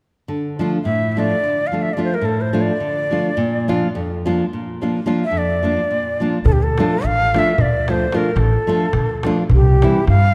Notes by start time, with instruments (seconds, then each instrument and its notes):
0.28 nylon-string guitar D3
0.59 nylon-string guitar F3 A3 D4 F4
0.84 nylon-string guitar A2, ney E5
1.12 ney E5
1.17 nylon-string guitar F3 A3 D4 F4, ney D5
1.43 nylon-string guitar D3
1.67 ney F5
1.72 nylon-string guitar F3 A3 D4 F4
1.82 ney E5
1.93 nylon-string guitar F3 A3, ney D5
1.98 nylon-string guitar D4 F4
2.04 ney C5
2.14 ney A#4
2.21 nylon-string guitar A2, ney A4
2.41 ney C5
2.53 nylon-string guitar F3 A3 D4 F4
2.61 ney D5
2.80 nylon-string guitar D3
3.11 nylon-string guitar F3 A3 D4 F4
3.37 nylon-string guitar A#2
3.68 nylon-string guitar F3 A#3 D4 F4
3.95 nylon-string guitar F2
4.26 nylon-string guitar F3 A#3 D4 F4
4.53 nylon-string guitar A#2
4.82 nylon-string guitar F3 A#3 D4 F4
5.06 nylon-string guitar F3 A#3 D4 F4
5.24 ney E5
5.31 nylon-string guitar F2
5.38 ney D5
5.63 nylon-string guitar F3 A#3 D4 F4
5.90 nylon-string guitar A#2
6.20 nylon-string guitar F3 A#3 D4 F4
6.45 upright bass D2, ney A4, darbuka dum
6.52 ney G4
6.62 ney A4, darbuka tek
6.78 nylon-string guitar F3 A3 D4 F4, darbuka tek
7.02 upright bass A1, ney F5, darbuka tek
7.19 darbuka tek
7.34 nylon-string guitar F3 A3 D4 F4, darbuka tek
7.38 ney E5
7.46 darbuka tek
7.58 upright bass D2, ney D5, darbuka dum
7.88 nylon-string guitar F3 A3 D4 F4, ney C5, darbuka tek
8.12 nylon-string guitar F3 A3 D4 F4, ney A#4, darbuka tek
8.25 darbuka tek
8.36 upright bass A1, ney A4, darbuka tek
8.53 darbuka tek
8.67 nylon-string guitar F3 A3 D4 F4
8.80 darbuka tek
8.93 upright bass D2, darbuka tek, darbuka dum
9.09 darbuka tek
9.23 nylon-string guitar F3 A3 D4 F4, darbuka tek
9.50 upright bass C2, darbuka dum
9.54 ney G4
9.66 darbuka tek
9.82 nylon-string guitar E3 G3 C4 E4, darbuka tek
10.07 upright bass G2, ney F5, darbuka tek
10.22 darbuka tek